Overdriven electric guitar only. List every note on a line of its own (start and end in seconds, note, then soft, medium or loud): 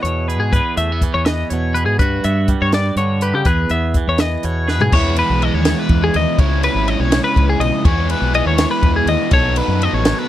4.94 6.38 E3 medium
4.94 6.39 G#3 medium
4.94 6.39 B3 medium
4.94 6.40 E4 loud
6.38 7.84 C#3 medium
6.38 7.84 G#3 medium
6.38 7.84 C#4 medium
6.38 7.84 E4 loud
7.85 9.30 E3 medium
7.85 9.30 G#3 loud
7.85 9.31 B3 loud
7.85 9.30 E4 loud
7.85 9.31 G#4 loud
9.31 10.28 B2 loud
9.31 10.28 D#3 medium
9.31 10.28 F#3 loud
9.31 10.28 B3 loud
9.31 10.28 D#4 loud
9.31 10.28 A4 loud